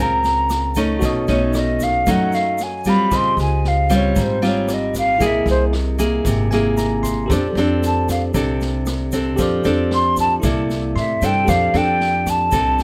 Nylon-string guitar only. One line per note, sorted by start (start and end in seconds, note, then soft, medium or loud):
0.00 1.00 C#3 soft
0.00 0.72 C4 medium
0.00 0.73 F4 medium
0.00 0.73 A#4 medium
0.76 1.24 A3 medium
0.76 1.24 C#4 medium
0.76 1.25 D#4 medium
1.03 2.04 B2 medium
1.28 2.03 A3 medium
1.28 2.03 C#4 medium
1.28 2.03 D#4 medium
2.07 3.09 F#3 medium
2.07 2.59 A3 medium
2.07 2.59 C#4 medium
2.07 2.59 D#4 medium
2.86 3.34 G3 medium
2.86 3.34 C4 medium
2.86 3.34 F4 medium
3.11 4.13 C#3 medium
3.90 4.38 G3 medium
3.90 4.38 C4 medium
3.90 4.38 F4 medium
4.16 5.18 G#2 medium
4.42 5.16 G3 medium
4.42 5.16 C4 medium
4.42 5.17 F4 medium
5.20 6.22 C3 medium
5.20 5.72 A#3 medium
5.20 5.73 E4 medium
5.20 5.73 G#4 medium
5.98 6.47 A#3 medium
5.98 6.47 E4 medium
5.98 6.47 G#4 medium
6.27 7.28 C3 medium
6.52 7.26 A#3 medium
6.52 7.26 E4 medium
6.52 7.27 G#4 medium
7.30 8.32 F3 medium
7.30 7.45 C4 medium
7.30 7.46 D4 medium
7.30 7.46 A4 medium
7.57 8.31 C4 medium
7.57 8.31 D4 medium
7.57 8.31 A4 medium
8.34 9.36 C3 medium
8.34 8.86 C4 medium
8.34 8.87 D4 medium
8.34 8.87 A4 medium
9.13 9.61 C4 medium
9.13 9.61 D4 medium
9.13 9.61 A4 medium
9.39 10.41 F3 medium
9.65 10.39 C4 medium
9.65 10.39 D4 medium
9.65 10.39 A4 medium
10.44 11.45 C3 medium
10.44 10.96 A#3 medium
10.44 10.96 E4 medium
10.44 10.96 A4 medium
11.22 11.70 C4 medium
11.22 11.70 D4 medium
11.22 11.70 A4 medium
11.48 12.50 F3 medium
11.74 12.48 C4 medium
11.74 12.48 D4 medium
11.74 12.49 A4 medium
12.52 12.83 C3 medium
12.52 12.83 C4 soft
12.52 12.83 D4 medium
12.52 12.83 A4 medium